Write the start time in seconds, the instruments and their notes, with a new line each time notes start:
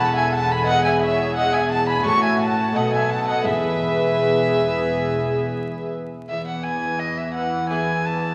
Already playing: double bass section E1, cello section E2, harpsichord E2 B3 D#4 A4, viola section A4, violin section F#5
0.00 violin A5, violin section A5
0.16 violin section E5 G#5, violin G#5
0.33 violin section F#5 A5, violin A5
0.49 violin section G#5 B5, violin B5
0.63 harpsichord B3 E4 G#4, viola section G#4, violin section D#5, violin F#5
0.68 violin section F#5
0.85 violin section E5 G#5, violin G#5
1.01 violin section C#5 E5, violin E5
1.36 violin section D#5 F#5, violin F#5
1.52 violin section E5 G#5, violin G#5
1.69 violin section F#5 A5, violin A5
1.87 violin section G#5 B5, violin B5
2.02 double bass section A1, harpsichord C#4 F#4 A4, viola section F#4, violin section A5 C#6
2.06 cello section A2, harpsichord A2, violin C#6
2.22 violin section E5 G#5, violin G#5
2.40 violin section F#5 A5, violin A5
2.72 cello section B2, harpsichord B3 D#4 A4, viola section A4, violin section D#5 F#5
2.76 double bass section B1, harpsichord B2, violin F#5
2.93 violin section E5 G#5, violin G#5
3.10 violin section F#5 A5, violin A5
3.27 violin section D#5 F#5, violin F#5
3.42 double bass section E1, harpsichord B3 E4 G#4, viola section G#4, violin section B4 E5, violin E5
3.47 harpsichord E2, cello section E2
6.29 cello section E2, harpsichord E2, viola section E3, violin section B3 B4, violin E5
6.48 violin F#5
6.64 violin G#5
6.99 violin D#5
7.18 violin E5
7.34 violin F#5
7.69 harpsichord B3 E4 G#4, violin G#5
8.05 violin A5